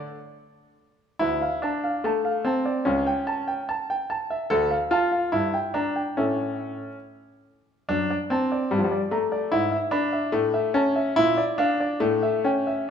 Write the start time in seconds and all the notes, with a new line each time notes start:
Already playing: A3 D4
1.19 D2 E4
1.42 F5
1.62 D4 A5
1.84 F5
2.04 A3 A5
2.25 F5
2.45 C4 A5
2.65 D5
2.85 C#2 C#4
3.07 G5
3.27 A5
3.48 G5
3.69 A5
3.90 G5
4.10 A5
4.30 E5
4.50 D2 A4
4.71 F5
4.91 F4 A5
5.12 F5
5.32 G2 E4
5.54 G5
5.74 D4 A#5
5.96 G5
6.17 A2 C#4 A4 E5
7.89 F#2 D4
8.10 D5
8.30 C4 A5
8.52 D5
8.71 G2 G3
8.79 F3
8.84 G3
8.92 D5
9.11 A3 A#5
9.32 D5
9.52 G#2 E4
9.72 E5
9.91 D4 B5
10.13 E5
10.32 A2 A3
10.54 E5
10.74 C#4 A5
10.96 E5
11.16 A#2 E4
11.37 D5
11.58 D4 F5
11.80 D5
12.00 A2 A3
12.23 E5
12.44 C#4 G5
12.67 E5